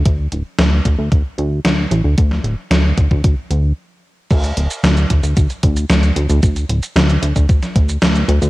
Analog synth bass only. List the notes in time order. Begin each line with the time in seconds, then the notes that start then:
0.06 D2
0.32 D1
0.59 D2
0.85 D2
0.99 D2
1.12 D2
1.38 D2
1.65 D2
1.91 A1
2.04 D2
2.18 D2
2.44 D1
2.71 D2
2.98 D2
3.11 D2
3.24 D2
3.51 D2
4.31 D2
4.57 D1
4.83 D2
5.10 D2
5.23 D2
5.37 D2
5.63 D2
5.90 D2
6.16 D2
6.29 D2
6.43 D2
6.69 D1
6.96 D2
7.22 D2
7.36 D2
7.49 D2
7.76 D2
8.02 D2
8.28 D2
8.42 D2